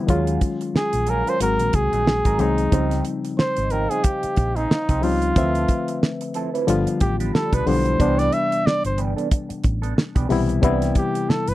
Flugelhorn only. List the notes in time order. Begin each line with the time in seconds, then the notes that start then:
0.77 G#4
1.10 A#4
1.29 C5
1.42 A#4
1.75 G#4
2.41 D#4
3.39 C5
3.72 A#4
3.90 G#4
4.04 G4
4.56 D#4
5.03 F4
7.01 G4
7.35 A4
7.54 B4
7.67 C5
8.19 D5
8.33 E5
8.66 D5
8.86 C5
10.97 G4
11.30 A4
11.49 B4